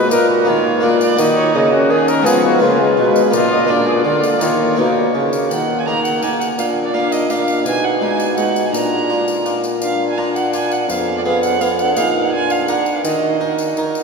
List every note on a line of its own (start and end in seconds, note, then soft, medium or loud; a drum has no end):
0.00 0.11 B2 medium
0.00 0.12 G#3 medium
0.00 0.10 B4 loud
0.00 0.11 D#5 medium
0.09 0.44 A#2 medium
0.09 0.49 A#2 medium
0.09 0.44 A#3 medium
0.09 1.38 A#3 medium
0.09 0.45 D#4 medium
0.09 0.29 A#4 loud
0.09 0.49 D#5 medium
0.09 tambourine medium
0.30 0.50 F#4 medium
0.45 0.80 D#3 medium
0.45 0.83 D#3 medium
0.45 0.79 A#3 medium
0.45 0.81 D#4 medium
0.45 1.01 F4 medium
0.45 0.85 C#5 medium
0.81 1.15 A#2 medium
0.81 1.18 A#2 medium
0.81 1.15 A#3 medium
0.81 1.17 D4 medium
0.81 1.01 D5 medium
1.01 1.21 D5 medium
1.01 tambourine soft
1.16 1.51 D#3 medium
1.16 1.54 D#3 loud
1.16 1.52 A#3 medium
1.16 1.69 D#4 loud
1.16 2.22 F#4 medium
1.16 1.36 D#5 medium
1.16 tambourine medium
1.37 1.54 C#5 medium
1.55 1.87 C#3 medium
1.55 1.90 C#3 medium
1.55 1.74 A#3 medium
1.55 1.90 D#5 medium
1.72 2.27 C#4 medium
1.72 1.92 F#4 loud
1.90 2.23 D#3 medium
1.90 2.26 D#3 medium
1.90 2.10 G#4 loud
1.90 2.29 D#5 medium
2.08 2.27 A#4 loud
2.08 tambourine medium
2.22 2.58 F3 medium
2.22 2.57 G#3 medium
2.22 2.59 B3 medium
2.22 2.64 B3 medium
2.22 2.60 F4 medium
2.22 2.43 G#4 loud
2.26 2.64 F3 medium
2.26 2.64 C#5 medium
2.26 tambourine medium
2.44 2.61 F#4 loud
2.58 2.97 C#3 medium
2.58 2.94 C#3 medium
2.58 3.29 G#3 medium
2.58 2.82 A#3 medium
2.58 3.30 B3 medium
2.58 3.30 F4 medium
2.58 3.14 F4 loud
2.62 2.97 B4 medium
2.81 2.98 G#3 medium
2.97 3.29 B2 medium
2.97 3.35 B2 medium
2.97 3.36 G#3 medium
2.97 3.36 B4 medium
3.16 tambourine medium
3.30 3.65 A#2 medium
3.30 3.69 A#2 medium
3.30 3.66 A#3 medium
3.30 3.67 D#4 medium
3.30 3.88 F4 loud
3.30 3.50 D#5 medium
3.30 tambourine medium
3.35 3.72 A#3 medium
3.51 3.71 D#5 medium
3.67 4.02 A#2 medium
3.67 4.05 A#2 medium
3.67 4.38 A#3 medium
3.67 4.39 D4 medium
3.67 4.07 D4 medium
3.67 4.05 D5 medium
3.87 3.98 G#4 loud
3.97 4.04 F#4 medium
4.05 4.38 D3 medium
4.05 4.41 D3 medium
4.05 4.42 A#3 medium
4.05 4.32 F4 loud
4.05 4.44 D5 medium
4.24 tambourine medium
4.33 4.40 F4 medium
4.39 4.75 D#3 medium
4.39 4.78 D#3 medium
4.39 4.75 A#3 medium
4.39 4.76 D#4 medium
4.39 4.79 F4 loud
4.39 5.33 C#5 medium
4.39 tambourine medium
4.43 5.32 A#3 medium
4.76 5.11 B2 medium
4.76 5.14 B2 medium
4.76 5.13 A#3 medium
4.76 5.48 D#4 medium
4.76 5.33 D#4 medium
5.14 5.47 C#3 medium
5.14 5.51 C#3 medium
5.33 tambourine medium
5.51 6.55 D#3 soft
5.51 6.41 D#3 medium
5.51 5.85 A#3 medium
5.51 5.85 A#4 medium
5.51 5.80 F#5 medium
5.51 tambourine medium
5.79 5.88 G#5 medium
5.86 6.13 A#3 soft
5.86 6.61 A#3 medium
5.86 6.13 D#4 soft
5.86 6.57 A#4 medium
5.86 6.04 A#5 medium
6.04 6.23 F#5 medium
6.04 tambourine soft
6.22 6.48 A#3 soft
6.22 6.49 D#4 medium
6.22 6.39 G#5 medium
6.22 tambourine soft
6.40 6.47 F#5 medium
6.40 tambourine soft
6.58 7.67 A#2 medium
6.58 7.62 A#2 medium
6.58 6.93 D4 medium
6.58 6.93 A#4 medium
6.58 6.66 F5 medium
6.58 tambourine medium
6.85 6.95 D5 medium
6.93 7.20 A#3 medium
6.93 7.29 D4 medium
6.93 7.20 D4 medium
6.93 7.29 A#4 medium
6.93 7.13 F5 medium
7.12 7.32 D#5 medium
7.12 tambourine medium
7.30 7.56 A#3 soft
7.30 7.67 D4 medium
7.30 7.56 D4 medium
7.30 7.67 A#4 medium
7.30 7.65 F5 medium
7.30 tambourine medium
7.48 tambourine soft
7.65 8.69 B2 medium
7.65 8.73 B2 medium
7.65 8.01 D#4 medium
7.65 8.01 G#4 medium
7.65 7.86 G#5 medium
7.65 tambourine medium
7.84 8.00 F#5 medium
8.01 8.27 G#3 medium
8.01 8.75 D#4 medium
8.01 8.28 D#4 medium
8.01 8.40 G#4 medium
8.01 8.36 G#5 medium
8.20 tambourine soft
8.37 8.63 G#3 soft
8.37 8.64 D#4 medium
8.37 8.76 F#4 medium
8.37 8.67 F#5 medium
8.37 tambourine medium
8.56 tambourine soft
8.66 8.73 G#5 medium
8.73 10.85 A#2 soft
8.73 10.86 A#2 medium
8.73 9.64 D4 medium
8.73 9.64 F4 medium
8.73 9.44 A#5 medium
8.73 tambourine medium
9.10 9.36 D4 soft
9.10 9.36 F4 soft
9.28 tambourine soft
9.46 9.72 D4 soft
9.46 9.72 F4 soft
9.46 tambourine soft
9.64 tambourine soft
9.82 10.16 D4 medium
9.82 10.16 F4 medium
9.82 10.07 F5 medium
9.82 tambourine medium
10.09 10.19 G#5 medium
10.18 10.91 D4 medium
10.18 10.44 D4 soft
10.18 10.44 F4 medium
10.18 10.91 F4 medium
10.18 10.36 A#5 medium
10.36 10.54 F#5 medium
10.36 tambourine soft
10.53 10.79 D4 soft
10.53 10.79 F4 soft
10.53 10.73 G#5 medium
10.53 tambourine soft
10.71 10.91 F#5 medium
10.71 tambourine soft
10.89 11.92 F2 medium
10.89 11.94 F2 medium
10.89 11.25 B3 medium
10.89 11.24 G#4 medium
10.89 11.17 F5 medium
10.89 tambourine medium
11.18 11.21 D5 medium
11.25 11.60 B3 medium
11.25 11.51 B3 medium
11.25 11.60 G#4 medium
11.25 11.51 G#4 medium
11.25 11.43 F5 medium
11.43 11.62 F#5 medium
11.43 tambourine soft
11.60 11.69 B3 medium
11.60 11.87 B3 medium
11.60 11.96 G#4 medium
11.60 11.87 G#4 medium
11.60 11.78 F5 medium
11.60 tambourine soft
11.79 11.99 D4 medium
11.79 11.96 F#5 medium
11.79 tambourine soft
11.96 12.75 A#2 medium
11.96 12.72 A#2 medium
11.96 12.29 D#4 soft
11.96 12.35 D#4 medium
11.96 12.35 G#4 medium
11.96 12.29 G#4 medium
11.96 12.23 F5 medium
11.96 tambourine medium
12.24 12.32 F#5 medium
12.32 13.05 D4 medium
12.32 13.05 F4 medium
12.32 12.52 G#5 medium
12.50 12.68 F5 medium
12.50 tambourine soft
12.68 12.95 D4 soft
12.68 12.95 A#4 soft
12.68 12.97 F#5 medium
12.68 tambourine medium
12.86 tambourine soft
12.95 13.04 F5 medium
13.04 13.91 D#3 soft
13.04 13.91 D#3 medium
13.04 13.94 D#4 medium
13.04 13.94 F#4 medium
13.04 13.76 D#5 medium
13.04 tambourine medium
13.41 13.67 D#4 soft
13.41 13.67 A#4 soft
13.58 tambourine soft
13.77 14.03 D#4 soft
13.77 14.03 A#4 soft
13.77 tambourine soft
13.95 tambourine soft